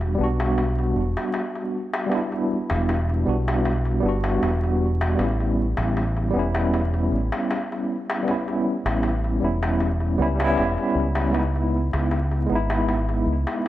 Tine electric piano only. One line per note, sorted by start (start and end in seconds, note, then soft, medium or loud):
0.00 0.13 G3 medium
0.00 0.14 B3 medium
0.00 0.15 D4 medium
0.00 0.17 F#4 medium
0.15 2.05 G3 medium
0.15 2.06 B3 medium
0.21 2.08 D4 medium
0.21 2.09 F#4 medium
2.06 3.20 G3 medium
2.06 3.21 B3 medium
2.12 3.22 D4 medium
2.12 3.24 E4 medium
3.26 3.45 G3 medium
3.26 3.45 B3 medium
3.26 3.46 D4 medium
3.26 3.47 F#4 medium
4.00 5.13 G3 medium
4.00 5.14 B3 medium
4.06 5.16 D4 medium
4.06 5.17 F#4 medium
5.15 6.28 G3 medium
5.15 6.29 B3 medium
5.21 6.31 C#4 medium
5.21 6.32 E4 medium
6.31 8.20 G3 medium
6.31 8.22 B3 medium
6.37 8.23 C#4 medium
6.37 8.25 E4 medium
8.22 9.35 G3 medium
8.22 9.37 B3 medium
8.28 9.38 C#4 medium
8.28 9.40 E4 medium
9.40 9.60 G3 medium
9.40 9.61 B3 medium
9.40 9.62 C#4 medium
9.45 9.62 E4 medium
10.18 10.34 G3 medium
10.18 10.34 B3 medium
10.18 10.35 C#4 medium
10.22 10.36 E4 medium
10.35 11.28 G3 medium
10.35 11.29 B3 medium
10.41 11.31 C#4 medium
10.41 11.32 E4 loud
11.31 12.43 G#3 medium
11.31 12.45 B3 medium
11.37 12.46 D#4 medium
11.37 12.48 E4 medium
12.46 13.68 G#3 medium
12.46 13.68 B3 medium
12.52 13.68 D#4 medium
12.52 13.68 E4 loud